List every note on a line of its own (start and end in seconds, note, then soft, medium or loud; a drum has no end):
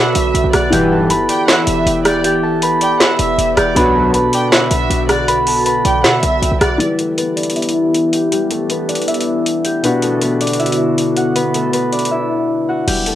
0.00 0.15 B2 loud
0.00 0.68 B2 medium
0.00 0.69 D3 medium
0.00 0.68 B3 medium
0.00 0.69 D4 medium
0.00 0.69 F#4 medium
0.00 0.92 A4 medium
0.00 1.11 B4 medium
0.00 1.29 D5 medium
0.00 1.49 E5 medium
0.00 0.14 F#5 loud
0.00 0.54 F#5 medium
0.00 0.84 A5 medium
0.00 0.94 B5 medium
0.00 0.99 D6 medium
0.00 1.10 E6 medium
0.15 0.34 B1 loud
0.15 0.51 E5 medium
0.15 closed hi-hat medium
0.34 0.44 B1 loud
0.34 closed hi-hat medium
0.44 0.53 B1 loud
0.53 0.72 B1 loud
0.53 0.71 D5 medium
0.53 0.79 F#5 medium
0.53 0.79 F#6 medium
0.53 cross-stick loud
0.53 closed hi-hat medium
0.70 1.12 E1 loud
0.70 1.08 B1 loud
0.70 1.08 G2 loud
0.70 3.71 E3 medium
0.70 1.08 E3 loud
0.70 3.73 E3 medium
0.70 6.76 B3 medium
0.70 3.72 E4 medium
0.70 3.73 G4 medium
0.70 3.72 G4 medium
0.70 2.25 G4 medium
0.70 3.73 B4 medium
0.70 2.06 G5 loud
0.70 closed hi-hat medium
0.92 2.44 A4 medium
0.92 2.37 A5 medium
1.10 1.28 G1 loud
1.10 2.63 B4 medium
1.10 2.46 B5 medium
1.10 closed hi-hat medium
1.29 2.82 D5 medium
1.29 1.47 G5 medium
1.29 2.51 D6 medium
1.29 closed hi-hat medium
1.48 3.01 E5 medium
1.48 1.66 F#5 medium
1.48 2.62 E6 medium
1.48 finger snap loud
1.48 snare loud
1.48 closed hi-hat medium
1.67 1.86 E1 loud
1.67 2.03 E5 medium
1.67 closed hi-hat loud
1.86 2.96 E1 loud
1.86 closed hi-hat medium
2.05 2.23 D5 medium
2.05 2.24 G5 medium
2.05 3.11 G6 medium
2.05 cross-stick loud
2.05 closed hi-hat medium
2.24 4.60 G4 medium
2.24 3.57 G5 medium
2.24 closed hi-hat medium
2.43 3.96 A4 medium
2.43 3.88 A5 medium
2.62 3.77 B4 medium
2.62 3.76 B5 medium
2.62 closed hi-hat medium
2.81 4.34 D5 medium
2.81 2.99 G5 medium
2.81 4.03 D6 medium
2.81 closed hi-hat medium
3.00 4.52 E5 medium
3.00 3.18 F#5 medium
3.00 4.14 E6 medium
3.00 finger snap loud
3.00 snare loud
3.00 closed hi-hat medium
3.19 3.37 E1 loud
3.19 3.55 E5 medium
3.19 closed hi-hat medium
3.38 3.56 E1 loud
3.38 closed hi-hat medium
3.57 3.75 E1 loud
3.57 3.75 D5 medium
3.57 5.15 G5 medium
3.57 4.62 G6 medium
3.57 cross-stick loud
3.57 closed hi-hat medium
3.75 4.31 B1 loud
3.75 4.12 D2 loud
3.75 6.75 B2 medium
3.75 4.12 B2 loud
3.75 6.77 D3 medium
3.75 4.12 F#3 loud
3.75 6.76 B3 medium
3.75 6.76 D4 medium
3.75 6.77 F#4 medium
3.75 4.15 B4 medium
3.75 4.14 B5 loud
3.75 closed hi-hat medium
3.95 5.47 A4 medium
3.95 5.40 A5 medium
4.14 5.28 B4 medium
4.14 5.28 B5 medium
4.14 closed hi-hat medium
4.33 5.85 D5 medium
4.33 4.51 G5 medium
4.33 5.55 D6 medium
4.33 closed hi-hat medium
4.52 6.04 E5 medium
4.52 4.70 F#5 medium
4.52 5.66 E6 medium
4.52 finger snap loud
4.52 snare loud
4.52 closed hi-hat medium
4.71 4.89 B1 loud
4.71 5.07 E5 medium
4.71 closed hi-hat medium
4.90 5.81 B1 loud
4.90 closed hi-hat medium
5.09 5.27 D5 medium
5.09 6.61 F#5 medium
5.09 6.15 F#6 medium
5.09 cross-stick loud
5.09 closed hi-hat medium
5.28 5.67 B4 medium
5.28 5.66 B5 loud
5.28 closed hi-hat medium
5.47 6.99 A4 medium
5.47 6.92 A5 medium
5.47 open hi-hat medium
5.66 7.17 B4 medium
5.66 7.01 B5 medium
5.66 closed hi-hat medium
5.85 6.06 B1 loud
5.85 7.36 D5 medium
5.85 6.03 G5 medium
5.85 7.07 D6 medium
5.85 closed hi-hat medium
6.04 6.22 B2 medium
6.04 7.56 E5 medium
6.04 6.22 F#5 loud
6.04 7.17 E6 medium
6.04 finger snap loud
6.04 snare loud
6.04 closed hi-hat medium
6.23 6.41 B1 loud
6.23 6.59 E5 medium
6.23 closed hi-hat loud
6.42 6.51 B1 loud
6.42 closed hi-hat medium
6.51 6.60 B1 loud
6.61 6.79 B1 loud
6.61 6.79 D5 medium
6.61 6.86 F#5 medium
6.61 6.86 F#6 medium
6.61 cross-stick loud
6.61 closed hi-hat medium
6.78 9.79 E3 medium
6.78 9.81 E3 medium
6.78 8.31 G3 medium
6.78 9.81 B3 medium
6.78 9.79 E4 medium
6.78 9.81 G4 medium
6.78 8.13 G4 medium
6.78 9.80 G4 medium
6.78 9.81 B4 medium
6.78 closed hi-hat medium
6.99 8.51 A3 medium
6.99 8.50 A4 medium
6.99 closed hi-hat medium
7.18 8.71 B3 medium
7.18 8.70 B4 medium
7.18 closed hi-hat medium
7.36 8.89 D4 medium
7.36 8.88 D5 medium
7.36 closed hi-hat medium
7.43 closed hi-hat medium
7.50 closed hi-hat medium
7.56 9.08 E4 medium
7.56 9.07 E5 medium
7.56 closed hi-hat medium
7.62 closed hi-hat medium
7.69 closed hi-hat medium
7.94 closed hi-hat medium
8.13 8.31 G4 medium
8.13 9.64 G5 medium
8.13 closed hi-hat medium
8.32 9.89 G3 medium
8.32 9.65 G4 medium
8.32 closed hi-hat medium
8.51 10.03 A3 medium
8.51 10.02 A4 medium
8.51 closed hi-hat medium
8.70 9.85 B3 medium
8.70 9.84 B4 medium
8.70 closed hi-hat medium
8.89 10.41 D4 medium
8.89 10.41 D5 medium
8.89 closed hi-hat medium
8.95 closed hi-hat medium
9.02 closed hi-hat medium
9.08 10.60 E4 medium
9.08 10.59 E5 medium
9.08 closed hi-hat medium
9.14 closed hi-hat medium
9.21 closed hi-hat medium
9.46 closed hi-hat medium
9.65 11.23 G4 medium
9.65 11.23 G5 medium
9.65 closed hi-hat medium
9.82 12.83 B2 medium
9.82 12.85 D3 medium
9.82 12.84 B3 medium
9.82 12.85 B3 medium
9.82 10.22 B3 medium
9.82 12.84 D4 medium
9.82 12.85 F#4 medium
9.82 10.22 B4 loud
9.82 closed hi-hat medium
10.02 11.55 A3 medium
10.02 11.54 A4 medium
10.02 closed hi-hat medium
10.22 11.36 B3 medium
10.22 11.35 B4 medium
10.22 closed hi-hat medium
10.41 11.93 D4 medium
10.41 11.92 D5 medium
10.41 closed hi-hat medium
10.47 closed hi-hat medium
10.53 closed hi-hat medium
10.60 12.12 E4 medium
10.60 12.11 E5 medium
10.60 closed hi-hat medium
10.66 closed hi-hat medium
10.72 closed hi-hat medium
10.98 closed hi-hat medium
11.17 12.69 F#4 medium
11.17 12.68 F#5 medium
11.17 closed hi-hat medium
11.36 11.74 B3 medium
11.36 11.73 B4 loud
11.36 closed hi-hat medium
11.54 13.07 A3 medium
11.54 13.06 A4 medium
11.54 closed hi-hat medium
11.73 13.15 B3 medium
11.73 13.15 B4 medium
11.73 closed hi-hat medium
11.92 13.15 D4 medium
11.92 13.15 D5 medium
11.92 closed hi-hat soft
11.99 closed hi-hat medium
12.05 closed hi-hat medium
12.11 13.15 E4 medium
12.11 13.15 E5 medium
12.69 12.94 F#4 medium
12.69 12.94 F#5 medium
12.88 13.15 E1 loud
12.88 13.15 G3 medium
12.88 13.15 G4 loud
12.88 closed hi-hat medium
12.88 crash loud
13.06 13.15 A3 medium
13.06 13.15 A4 medium
13.06 closed hi-hat medium